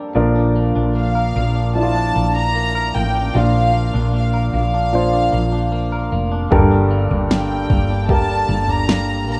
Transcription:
Already playing: F3 G3 A#3 D4 A4 C5 D5 F5 G5 A5
0.14 A#1 A#2 F3 D4 A#4 F5 D6
0.35 D4
0.56 A#3
0.75 A#1 D4
0.95 A#3 F5
1.15 A#4
1.35 A#1 A#3
1.55 D4
1.75 F3 D4 E4 A5
1.83 F4
1.95 D4
2.15 A#1 A#3
2.36 D4 A#5
2.55 A#3
2.75 A#4
2.95 A1 A#3 G5
3.15 D4
3.34 A#1 A#2 F3 D4 F4 F5
3.54 D4
3.74 A#3
3.94 A#1 D4
4.13 A#3 F5
4.34 A#4
4.53 A#1 A#3 F5
4.74 D4
4.93 A#2 F3 D4 C5
5.13 D4
5.32 A#1 A#3
5.52 D4
5.72 A#3
5.92 A#4
6.12 F1 A#3
6.32 D4
6.51 G1 G2 D3 G4 A4 A#4 G5, kick, floor tom
6.71 D4
6.91 A#3
7.10 G1 D4, floor tom
7.30 A#3 G5, snare
7.70 G1 A#3, kick, floor tom
7.90 D4
8.09 G2 A#3 G4 A#4 A5, kick, floor tom
8.29 D4
8.48 G1 A#3
8.68 D4 A#5, floor tom
8.89 A#3, snare
9.28 A#1 A#3 A#5

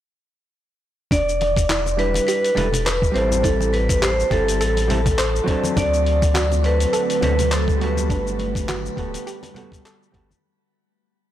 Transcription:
1.11 E1 D4 D5, kick, open hi-hat, muted conga, shaker
1.29 shaker
1.41 open hi-hat, muted conga
1.57 kick, open hi-hat, shaker
1.69 E4, clap, open hi-hat, high conga, shaker
1.86 muted conga, shaker
1.97 G3 D4 E4 B4, open hi-hat
2.14 open hi-hat, muted conga, shaker
2.27 G4 B4, open hi-hat, shaker
2.44 open hi-hat, shaker
2.55 E1 G3 D4 E4 A4 B4, open hi-hat, muted conga, high conga, low conga
2.73 open hi-hat, low conga, shaker
2.85 B4, clap, open hi-hat, muted conga, shaker
3.02 kick, shaker
3.12 A1 G3 C4 C5, open hi-hat
3.16 E4 A4
3.32 muted conga, high conga, shaker
3.43 E4 A4, kick, open hi-hat, shaker
3.60 muted conga, shaker
3.73 B4, open hi-hat
3.89 kick, open hi-hat, shaker
4.02 G4 C5, clap, open hi-hat, muted conga, high conga, shaker
4.20 shaker
4.30 G1 G3 C4 E4 A4, kick, open hi-hat, muted conga
4.48 open hi-hat, shaker
4.60 A1 A4, open hi-hat, shaker
4.77 open hi-hat, muted conga, shaker
4.88 G3 C4 E4 A4, open hi-hat, high conga, low conga
5.06 kick, open hi-hat, muted conga, low conga, shaker
5.18 C5, clap, open hi-hat, shaker
5.36 shaker
5.44 F#3 C4, kick, muted conga
5.48 D4 A4, open hi-hat
5.63 high conga, shaker
5.76 D2 D3 F#3 A3 C4 D4 F#4 D5, kick, open hi-hat, muted conga, shaker
5.94 shaker
6.06 open hi-hat
6.22 kick, open hi-hat, muted conga, shaker
6.34 F#4, clap, open hi-hat, high conga, shaker
6.52 muted conga, shaker
6.62 F#3 C4 D4 A4 B4, open hi-hat
6.80 open hi-hat, shaker
6.93 A4, open hi-hat, muted conga, shaker
7.10 open hi-hat, shaker
7.21 D2 F#3 C4 D4 A4 B4, open hi-hat, muted conga, high conga, low conga
7.39 open hi-hat, low conga, shaker
7.52 A4 C5, clap, open hi-hat, shaker
7.68 kick, muted conga, shaker
7.77 G3 B3
7.81 F#4 A4 B4, open hi-hat
7.97 muted conga, high conga, shaker
8.09 G1 G3 B3 D4, kick, open hi-hat, shaker
8.27 shaker
8.39 open hi-hat, muted conga
8.55 kick, open hi-hat, shaker
8.69 F#4, clap, open hi-hat, muted conga, high conga, shaker
8.86 shaker
8.96 D1 G3 B3 F#4 A4, kick, open hi-hat
9.14 open hi-hat, muted conga, shaker
9.26 G4, open hi-hat, shaker
9.43 open hi-hat, muted conga, shaker
9.54 G3 B3 F#4 A4, open hi-hat, high conga, low conga
9.72 kick, open hi-hat, low conga, shaker
9.85 A4, clap, open hi-hat, muted conga, shaker
10.03 shaker
10.12 G1 G3 B3 F#4 A4, kick, open hi-hat, muted conga
10.31 high conga, shaker

